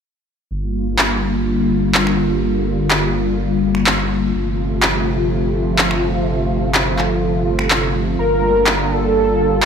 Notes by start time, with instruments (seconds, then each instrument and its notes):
0.51 sub bass G1, analog synth pad D3 G3 A#3 F4
0.99 clap
1.95 clap
2.07 finger snap
2.91 clap
3.75 finger snap
3.87 clap
4.35 sub bass G1, analog synth pad C3 F3 A3 F4
4.83 clap
5.79 clap
5.91 finger snap
6.75 clap
6.99 clap
7.59 finger snap
7.71 clap
8.19 sub bass G1, analog synth pad D3 G3 A#3 F4, analog synth lead A#4
8.67 clap
8.91 analog synth lead A4